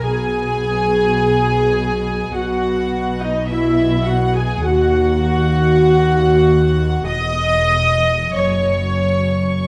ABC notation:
X:1
M:4/4
L:1/16
Q:1/4=51
K:B
V:1 name="Violin section"
g8 f3 d e2 f g | f8 d'4 c'4 |]
V:2 name="Violin section"
g8 f3 d e2 f g | f8 d'4 c'4 |]
V:3 name="Viola section"
G8 F3 D E2 F G | F8 d4 c4 |]
V:4 name="Cello section" clef=bass
B,,8 B,,8 | D,,8 E,,4 F,,4 |]
V:5 name="Double bass section" clef=bass
B,,,8 B,,,8 | D,,8 E,,,4 F,,,4 |]